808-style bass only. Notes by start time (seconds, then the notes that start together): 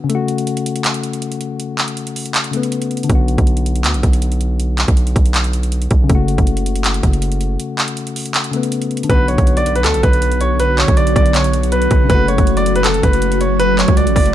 3.10 B1
3.38 B1
3.85 D2
3.95 B1
4.03 B1
4.88 B1
5.16 B1
5.91 B1
6.10 F#1
6.38 F#1
7.03 F#1
9.10 B1
9.38 B1
9.85 D2
9.94 B1
10.03 B1
10.88 B1
11.16 B1
11.91 B1
12.10 F#1
12.38 F#1
13.03 F#1
13.88 C#2
14.07 A1
14.16 F#1